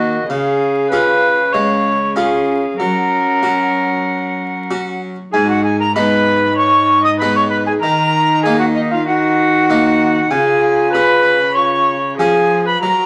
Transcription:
Already playing: cello D#3, harpsichord D#3 A#3 D#4, trombone A#3, viola F#4, recorder D#5
0.28 cello C#3, harpsichord C#3, trombone C#4, viola G#4, recorder F5
0.90 harpsichord C#4 F4 G#4, viola B4
1.53 harpsichord G#3, trombone C#4, viola C#5, recorder F5
2.16 harpsichord C#4 F4 G#4, trombone C#4, viola G#4, recorder F5
2.79 cello F#3, harpsichord F#3, trombone C#4, viola A#4, recorder F#5
3.43 harpsichord C#4 F#4
4.71 harpsichord C#4 F#4
5.32 cello G#2, harpsichord G#2, trombone D#4, viola G#4, recorder G#5
5.47 viola F#4, recorder F#5
5.62 viola G#4, recorder G#5
5.80 viola A#4, recorder A#5
5.95 harpsichord G#3 B3 D#4, trombone D#4, viola B4, recorder B5
6.57 viola C#5, recorder C#6
7.03 viola D#5, recorder D#6
7.19 harpsichord G#3 B3 D#4, viola B4, recorder B5
7.36 viola C#5, recorder C#6
7.50 viola B4, recorder B5
7.66 viola G#4, recorder G#5
7.81 cello D#3, harpsichord D#3, trombone D#4, viola A#4, recorder A#5
8.43 harpsichord A#3 D#4, viola G#4, recorder G#5
8.59 viola F#4, recorder F#5
8.74 viola D#4, recorder D#5
8.91 viola F4, recorder F5
9.06 trombone D#4, viola F#4, recorder F#5
9.70 harpsichord A#3 D#4
10.31 harpsichord C#3, cello C#3, trombone F4, viola G#4, recorder G#5
10.92 harpsichord C#4 G#4, viola B4, recorder B5
11.54 trombone F4, viola C#5, recorder C#6
12.17 cello F3, harpsichord F3 C#4 G#4, trombone F4, viola G#4, recorder G#5
12.65 viola B4, recorder B5
12.81 cello F#3, harpsichord F#3, trombone F#4, viola A#4, recorder A#5

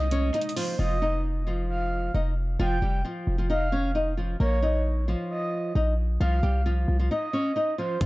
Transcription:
Already playing: 808-style bass C2, ambient pad C3 A#3 D#4, soft synth lead D#5
0.11 nylon-string guitar C#4 C#5, closed hi-hat
0.34 nylon-string guitar D#4 D#5, closed hi-hat
0.41 closed hi-hat
0.49 closed hi-hat
0.56 nylon-string guitar F3 F4, soft synth lead C5, open hi-hat
0.79 808-style bass F1, nylon-string guitar F3 F4, soft synth lead D#5
1.02 nylon-string guitar D#4 D#5
1.47 nylon-string guitar F3 F4
1.69 soft synth lead F5
2.14 808-style bass F1, nylon-string guitar D#4 D#5
2.59 808-style bass F1, nylon-string guitar F3 F4, soft synth lead G5
2.82 808-style bass F1, nylon-string guitar G3 G4
3.05 nylon-string guitar F3 F4
3.27 808-style bass F1
3.38 nylon-string guitar F3 F4
3.50 nylon-string guitar D#4 D#5, soft synth lead F5
3.72 nylon-string guitar C#4 C#5
3.95 nylon-string guitar D#4 D#5
4.17 nylon-string guitar F3 F4
4.40 808-style bass A#1, nylon-string guitar A#3 A#4, soft synth lead C#5
4.62 nylon-string guitar D#4 D#5
5.08 nylon-string guitar F3 F4
5.30 soft synth lead D#5
5.75 808-style bass A#1, nylon-string guitar D#4 D#5
6.20 808-style bass C2, nylon-string guitar F3 F4, soft synth lead F5
6.43 808-style bass C2, nylon-string guitar G3 G4
6.66 nylon-string guitar F3 F4
6.88 808-style bass C2
6.99 nylon-string guitar F3 F4
7.11 nylon-string guitar D#4 D#5, soft synth lead D#5
7.33 nylon-string guitar C#4 C#5
7.56 nylon-string guitar D#4 D#5
7.78 nylon-string guitar F3 F4, soft synth lead C5
8.01 808-style bass F1, nylon-string guitar F3 F4, kick, closed hi-hat

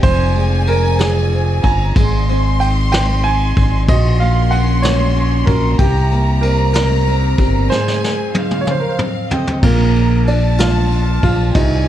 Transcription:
Already playing: steel-string acoustic guitar C4
0.03 fingered electric bass F1, steel-string acoustic guitar F2 F4, grand piano C5, violin section G#5, kick, ride
0.35 steel-string acoustic guitar G#3, ride
0.67 steel-string acoustic guitar C4, grand piano A#4, ride
0.99 steel-string acoustic guitar F4, grand piano G#4, snare, ride
1.32 steel-string acoustic guitar C4, ride
1.63 fingered electric bass G1, steel-string acoustic guitar F4, grand piano G#5, violin section A#5, kick, ride
1.96 fingered electric bass G#1, steel-string acoustic guitar G#3, violin section C6, kick, ride
2.29 steel-string acoustic guitar C4, ride
2.60 steel-string acoustic guitar D#4, grand piano G5, ride
2.92 grand piano G5, snare, ride
3.24 steel-string acoustic guitar D#4, grand piano G#5, ride
3.57 fingered electric bass G#1, kick, ride
3.88 fingered electric bass A#1, steel-string acoustic guitar A#2 F#4, grand piano D#5, violin section C6, kick, ride
4.20 steel-string acoustic guitar A#3, grand piano F5, ride
4.51 steel-string acoustic guitar C#4, grand piano F#5, ride
4.82 steel-string acoustic guitar F#4, grand piano C#5, snare, ride
5.16 steel-string acoustic guitar C#4, ride
5.46 fingered electric bass A#1, steel-string acoustic guitar F#4, grand piano A#4, kick, ride
5.78 fingered electric bass C2, steel-string acoustic guitar C3 G4, grand piano G4, violin section A#5, kick, ride
6.11 steel-string acoustic guitar A#3, ride
6.41 steel-string acoustic guitar C4, grand piano A#4, ride
6.73 steel-string acoustic guitar G4, grand piano A#4, snare, ride
7.06 steel-string acoustic guitar C4, ride
7.38 fingered electric bass G1, steel-string acoustic guitar G4, kick, ride
7.70 steel-string acoustic guitar G#2 G#4, grand piano C5, violin section G#5, snare
7.88 snare
8.02 steel-string acoustic guitar C4, snare
8.34 steel-string acoustic guitar D#4, violin section F5, high tom
8.51 mid tom
8.61 grand piano C#5
8.65 steel-string acoustic guitar F2, mid tom
8.71 grand piano C5
8.80 grand piano A#4
8.89 grand piano C5
8.99 steel-string acoustic guitar C4, mid tom
9.31 grand piano C4, steel-string acoustic guitar A4, violin section D#5, floor tom
9.47 floor tom
9.62 fingered electric bass A#1, steel-string acoustic guitar A#2 F4, grand piano A#3, violin section A#5, kick, crash
9.96 ride
10.27 steel-string acoustic guitar D4, grand piano D4, violin section A5, ride
10.58 grand piano F4, steel-string acoustic guitar F4, snare, ride
10.91 steel-string acoustic guitar D4, ride
11.23 fingered electric bass A#1, steel-string acoustic guitar F4, grand piano F4, kick, ride
11.55 fingered electric bass C2, steel-string acoustic guitar C3 F4, grand piano D#4, violin section G#5, kick, ride

